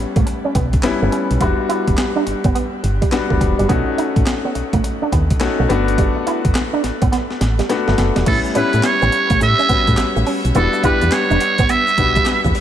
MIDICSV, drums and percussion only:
0, 0, Header, 1, 2, 480
1, 0, Start_track
1, 0, Tempo, 571429
1, 1184, Time_signature, 4, 2, 24, 8
1, 10587, End_track
2, 0, Start_track
2, 0, Title_t, "Drums"
2, 134, Note_on_c, 9, 36, 97
2, 134, Note_on_c, 9, 42, 53
2, 218, Note_off_c, 9, 36, 0
2, 218, Note_off_c, 9, 42, 0
2, 225, Note_on_c, 9, 42, 86
2, 309, Note_off_c, 9, 42, 0
2, 462, Note_on_c, 9, 36, 92
2, 463, Note_on_c, 9, 42, 83
2, 546, Note_off_c, 9, 36, 0
2, 547, Note_off_c, 9, 42, 0
2, 614, Note_on_c, 9, 42, 55
2, 616, Note_on_c, 9, 36, 91
2, 696, Note_on_c, 9, 39, 99
2, 698, Note_off_c, 9, 42, 0
2, 700, Note_off_c, 9, 36, 0
2, 700, Note_on_c, 9, 38, 124
2, 703, Note_on_c, 9, 42, 76
2, 780, Note_off_c, 9, 39, 0
2, 784, Note_off_c, 9, 38, 0
2, 787, Note_off_c, 9, 42, 0
2, 943, Note_on_c, 9, 42, 69
2, 1027, Note_off_c, 9, 42, 0
2, 1097, Note_on_c, 9, 42, 58
2, 1181, Note_off_c, 9, 42, 0
2, 1181, Note_on_c, 9, 42, 78
2, 1182, Note_on_c, 9, 36, 113
2, 1265, Note_off_c, 9, 42, 0
2, 1266, Note_off_c, 9, 36, 0
2, 1425, Note_on_c, 9, 42, 78
2, 1509, Note_off_c, 9, 42, 0
2, 1575, Note_on_c, 9, 36, 97
2, 1575, Note_on_c, 9, 42, 57
2, 1659, Note_off_c, 9, 36, 0
2, 1659, Note_off_c, 9, 42, 0
2, 1659, Note_on_c, 9, 39, 84
2, 1661, Note_on_c, 9, 42, 76
2, 1663, Note_on_c, 9, 38, 111
2, 1743, Note_off_c, 9, 39, 0
2, 1745, Note_off_c, 9, 42, 0
2, 1747, Note_off_c, 9, 38, 0
2, 1904, Note_on_c, 9, 42, 71
2, 1988, Note_off_c, 9, 42, 0
2, 2051, Note_on_c, 9, 42, 56
2, 2053, Note_on_c, 9, 36, 100
2, 2135, Note_off_c, 9, 42, 0
2, 2137, Note_off_c, 9, 36, 0
2, 2146, Note_on_c, 9, 42, 86
2, 2230, Note_off_c, 9, 42, 0
2, 2384, Note_on_c, 9, 42, 77
2, 2468, Note_off_c, 9, 42, 0
2, 2537, Note_on_c, 9, 36, 89
2, 2537, Note_on_c, 9, 42, 58
2, 2621, Note_off_c, 9, 36, 0
2, 2621, Note_off_c, 9, 42, 0
2, 2621, Note_on_c, 9, 39, 93
2, 2625, Note_on_c, 9, 38, 118
2, 2627, Note_on_c, 9, 42, 72
2, 2705, Note_off_c, 9, 39, 0
2, 2709, Note_off_c, 9, 38, 0
2, 2711, Note_off_c, 9, 42, 0
2, 2776, Note_on_c, 9, 36, 96
2, 2860, Note_off_c, 9, 36, 0
2, 2863, Note_on_c, 9, 36, 92
2, 2866, Note_on_c, 9, 42, 65
2, 2947, Note_off_c, 9, 36, 0
2, 2950, Note_off_c, 9, 42, 0
2, 3019, Note_on_c, 9, 42, 52
2, 3103, Note_off_c, 9, 42, 0
2, 3103, Note_on_c, 9, 36, 114
2, 3104, Note_on_c, 9, 42, 76
2, 3187, Note_off_c, 9, 36, 0
2, 3188, Note_off_c, 9, 42, 0
2, 3346, Note_on_c, 9, 42, 74
2, 3430, Note_off_c, 9, 42, 0
2, 3496, Note_on_c, 9, 36, 94
2, 3497, Note_on_c, 9, 42, 51
2, 3580, Note_off_c, 9, 36, 0
2, 3581, Note_off_c, 9, 42, 0
2, 3581, Note_on_c, 9, 39, 83
2, 3583, Note_on_c, 9, 42, 76
2, 3585, Note_on_c, 9, 38, 106
2, 3665, Note_off_c, 9, 39, 0
2, 3667, Note_off_c, 9, 42, 0
2, 3669, Note_off_c, 9, 38, 0
2, 3824, Note_on_c, 9, 42, 68
2, 3908, Note_off_c, 9, 42, 0
2, 3974, Note_on_c, 9, 36, 96
2, 3974, Note_on_c, 9, 42, 58
2, 4058, Note_off_c, 9, 36, 0
2, 4058, Note_off_c, 9, 42, 0
2, 4067, Note_on_c, 9, 42, 84
2, 4151, Note_off_c, 9, 42, 0
2, 4303, Note_on_c, 9, 36, 94
2, 4305, Note_on_c, 9, 42, 84
2, 4387, Note_off_c, 9, 36, 0
2, 4389, Note_off_c, 9, 42, 0
2, 4456, Note_on_c, 9, 42, 57
2, 4457, Note_on_c, 9, 36, 94
2, 4539, Note_on_c, 9, 39, 93
2, 4540, Note_off_c, 9, 42, 0
2, 4541, Note_off_c, 9, 36, 0
2, 4543, Note_on_c, 9, 38, 115
2, 4546, Note_on_c, 9, 42, 72
2, 4623, Note_off_c, 9, 39, 0
2, 4627, Note_off_c, 9, 38, 0
2, 4630, Note_off_c, 9, 42, 0
2, 4786, Note_on_c, 9, 42, 67
2, 4870, Note_off_c, 9, 42, 0
2, 4941, Note_on_c, 9, 42, 54
2, 5023, Note_on_c, 9, 36, 112
2, 5024, Note_off_c, 9, 42, 0
2, 5024, Note_on_c, 9, 42, 72
2, 5107, Note_off_c, 9, 36, 0
2, 5108, Note_off_c, 9, 42, 0
2, 5266, Note_on_c, 9, 42, 78
2, 5350, Note_off_c, 9, 42, 0
2, 5416, Note_on_c, 9, 36, 96
2, 5416, Note_on_c, 9, 42, 55
2, 5500, Note_off_c, 9, 36, 0
2, 5500, Note_off_c, 9, 42, 0
2, 5500, Note_on_c, 9, 39, 86
2, 5502, Note_on_c, 9, 42, 83
2, 5504, Note_on_c, 9, 38, 113
2, 5584, Note_off_c, 9, 39, 0
2, 5586, Note_off_c, 9, 42, 0
2, 5588, Note_off_c, 9, 38, 0
2, 5745, Note_on_c, 9, 38, 58
2, 5745, Note_on_c, 9, 42, 76
2, 5829, Note_off_c, 9, 38, 0
2, 5829, Note_off_c, 9, 42, 0
2, 5894, Note_on_c, 9, 42, 58
2, 5895, Note_on_c, 9, 36, 103
2, 5978, Note_off_c, 9, 42, 0
2, 5979, Note_off_c, 9, 36, 0
2, 5985, Note_on_c, 9, 38, 53
2, 5987, Note_on_c, 9, 42, 79
2, 6069, Note_off_c, 9, 38, 0
2, 6071, Note_off_c, 9, 42, 0
2, 6137, Note_on_c, 9, 38, 54
2, 6221, Note_off_c, 9, 38, 0
2, 6224, Note_on_c, 9, 38, 74
2, 6225, Note_on_c, 9, 42, 81
2, 6308, Note_off_c, 9, 38, 0
2, 6309, Note_off_c, 9, 42, 0
2, 6376, Note_on_c, 9, 42, 55
2, 6377, Note_on_c, 9, 38, 65
2, 6460, Note_off_c, 9, 42, 0
2, 6461, Note_off_c, 9, 38, 0
2, 6464, Note_on_c, 9, 38, 81
2, 6465, Note_on_c, 9, 42, 69
2, 6548, Note_off_c, 9, 38, 0
2, 6549, Note_off_c, 9, 42, 0
2, 6617, Note_on_c, 9, 38, 72
2, 6701, Note_off_c, 9, 38, 0
2, 6703, Note_on_c, 9, 38, 90
2, 6704, Note_on_c, 9, 42, 67
2, 6787, Note_off_c, 9, 38, 0
2, 6788, Note_off_c, 9, 42, 0
2, 6855, Note_on_c, 9, 38, 87
2, 6857, Note_on_c, 9, 42, 54
2, 6939, Note_off_c, 9, 38, 0
2, 6941, Note_off_c, 9, 42, 0
2, 6941, Note_on_c, 9, 42, 80
2, 6942, Note_on_c, 9, 49, 86
2, 6943, Note_on_c, 9, 36, 110
2, 6944, Note_on_c, 9, 82, 56
2, 7025, Note_off_c, 9, 42, 0
2, 7026, Note_off_c, 9, 49, 0
2, 7027, Note_off_c, 9, 36, 0
2, 7028, Note_off_c, 9, 82, 0
2, 7095, Note_on_c, 9, 82, 49
2, 7179, Note_off_c, 9, 82, 0
2, 7181, Note_on_c, 9, 82, 48
2, 7183, Note_on_c, 9, 42, 81
2, 7265, Note_off_c, 9, 82, 0
2, 7267, Note_off_c, 9, 42, 0
2, 7334, Note_on_c, 9, 42, 54
2, 7334, Note_on_c, 9, 82, 43
2, 7418, Note_off_c, 9, 42, 0
2, 7418, Note_off_c, 9, 82, 0
2, 7418, Note_on_c, 9, 39, 86
2, 7420, Note_on_c, 9, 42, 80
2, 7422, Note_on_c, 9, 38, 102
2, 7424, Note_on_c, 9, 82, 65
2, 7502, Note_off_c, 9, 39, 0
2, 7504, Note_off_c, 9, 42, 0
2, 7506, Note_off_c, 9, 38, 0
2, 7508, Note_off_c, 9, 82, 0
2, 7576, Note_on_c, 9, 82, 54
2, 7660, Note_off_c, 9, 82, 0
2, 7663, Note_on_c, 9, 82, 38
2, 7664, Note_on_c, 9, 42, 72
2, 7747, Note_off_c, 9, 82, 0
2, 7748, Note_off_c, 9, 42, 0
2, 7811, Note_on_c, 9, 42, 55
2, 7814, Note_on_c, 9, 36, 98
2, 7818, Note_on_c, 9, 82, 51
2, 7895, Note_off_c, 9, 42, 0
2, 7898, Note_off_c, 9, 36, 0
2, 7902, Note_off_c, 9, 82, 0
2, 7905, Note_on_c, 9, 82, 74
2, 7906, Note_on_c, 9, 42, 91
2, 7989, Note_off_c, 9, 82, 0
2, 7990, Note_off_c, 9, 42, 0
2, 8058, Note_on_c, 9, 82, 52
2, 8142, Note_off_c, 9, 82, 0
2, 8142, Note_on_c, 9, 42, 87
2, 8143, Note_on_c, 9, 36, 98
2, 8146, Note_on_c, 9, 82, 51
2, 8226, Note_off_c, 9, 42, 0
2, 8227, Note_off_c, 9, 36, 0
2, 8230, Note_off_c, 9, 82, 0
2, 8293, Note_on_c, 9, 42, 58
2, 8296, Note_on_c, 9, 36, 87
2, 8296, Note_on_c, 9, 82, 45
2, 8375, Note_on_c, 9, 39, 99
2, 8377, Note_off_c, 9, 42, 0
2, 8379, Note_on_c, 9, 38, 110
2, 8380, Note_off_c, 9, 36, 0
2, 8380, Note_off_c, 9, 82, 0
2, 8382, Note_on_c, 9, 42, 75
2, 8382, Note_on_c, 9, 82, 67
2, 8459, Note_off_c, 9, 39, 0
2, 8463, Note_off_c, 9, 38, 0
2, 8466, Note_off_c, 9, 42, 0
2, 8466, Note_off_c, 9, 82, 0
2, 8538, Note_on_c, 9, 82, 50
2, 8622, Note_off_c, 9, 82, 0
2, 8623, Note_on_c, 9, 46, 66
2, 8623, Note_on_c, 9, 82, 49
2, 8707, Note_off_c, 9, 46, 0
2, 8707, Note_off_c, 9, 82, 0
2, 8776, Note_on_c, 9, 42, 61
2, 8779, Note_on_c, 9, 82, 42
2, 8860, Note_off_c, 9, 42, 0
2, 8860, Note_on_c, 9, 42, 74
2, 8863, Note_off_c, 9, 82, 0
2, 8864, Note_on_c, 9, 82, 61
2, 8944, Note_off_c, 9, 42, 0
2, 8948, Note_off_c, 9, 82, 0
2, 9015, Note_on_c, 9, 82, 49
2, 9099, Note_off_c, 9, 82, 0
2, 9101, Note_on_c, 9, 36, 94
2, 9101, Note_on_c, 9, 82, 47
2, 9103, Note_on_c, 9, 42, 79
2, 9185, Note_off_c, 9, 36, 0
2, 9185, Note_off_c, 9, 82, 0
2, 9187, Note_off_c, 9, 42, 0
2, 9252, Note_on_c, 9, 42, 55
2, 9255, Note_on_c, 9, 82, 44
2, 9336, Note_off_c, 9, 42, 0
2, 9337, Note_on_c, 9, 39, 87
2, 9339, Note_off_c, 9, 82, 0
2, 9339, Note_on_c, 9, 42, 81
2, 9341, Note_on_c, 9, 38, 108
2, 9345, Note_on_c, 9, 82, 62
2, 9421, Note_off_c, 9, 39, 0
2, 9423, Note_off_c, 9, 42, 0
2, 9425, Note_off_c, 9, 38, 0
2, 9429, Note_off_c, 9, 82, 0
2, 9497, Note_on_c, 9, 82, 54
2, 9580, Note_on_c, 9, 42, 80
2, 9581, Note_off_c, 9, 82, 0
2, 9584, Note_on_c, 9, 82, 41
2, 9664, Note_off_c, 9, 42, 0
2, 9668, Note_off_c, 9, 82, 0
2, 9729, Note_on_c, 9, 42, 60
2, 9733, Note_on_c, 9, 36, 92
2, 9734, Note_on_c, 9, 82, 50
2, 9813, Note_off_c, 9, 42, 0
2, 9817, Note_off_c, 9, 36, 0
2, 9818, Note_off_c, 9, 82, 0
2, 9819, Note_on_c, 9, 82, 77
2, 9821, Note_on_c, 9, 42, 83
2, 9903, Note_off_c, 9, 82, 0
2, 9905, Note_off_c, 9, 42, 0
2, 9974, Note_on_c, 9, 82, 53
2, 10058, Note_off_c, 9, 82, 0
2, 10060, Note_on_c, 9, 82, 51
2, 10061, Note_on_c, 9, 36, 99
2, 10061, Note_on_c, 9, 42, 91
2, 10144, Note_off_c, 9, 82, 0
2, 10145, Note_off_c, 9, 36, 0
2, 10145, Note_off_c, 9, 42, 0
2, 10210, Note_on_c, 9, 82, 46
2, 10212, Note_on_c, 9, 42, 58
2, 10216, Note_on_c, 9, 36, 89
2, 10294, Note_off_c, 9, 82, 0
2, 10296, Note_off_c, 9, 42, 0
2, 10296, Note_on_c, 9, 39, 98
2, 10297, Note_on_c, 9, 82, 72
2, 10300, Note_off_c, 9, 36, 0
2, 10300, Note_on_c, 9, 38, 122
2, 10303, Note_on_c, 9, 42, 70
2, 10380, Note_off_c, 9, 39, 0
2, 10381, Note_off_c, 9, 82, 0
2, 10384, Note_off_c, 9, 38, 0
2, 10387, Note_off_c, 9, 42, 0
2, 10453, Note_on_c, 9, 82, 51
2, 10454, Note_on_c, 9, 36, 89
2, 10537, Note_off_c, 9, 82, 0
2, 10538, Note_off_c, 9, 36, 0
2, 10540, Note_on_c, 9, 82, 51
2, 10541, Note_on_c, 9, 46, 70
2, 10587, Note_off_c, 9, 46, 0
2, 10587, Note_off_c, 9, 82, 0
2, 10587, End_track
0, 0, End_of_file